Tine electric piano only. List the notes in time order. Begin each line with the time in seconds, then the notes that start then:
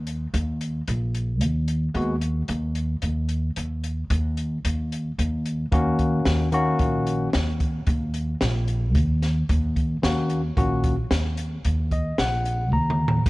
1.95 G#3 B3 F#4
5.72 D#3 A#3 C#4 F#4
6.52 D#3 A#3 C#4 F#4
10.02 D#3 A#3 C#4 F#4
10.57 D#3 A#3 C#4 F#4
11.92 D#5
12.20 F#5
12.73 A#5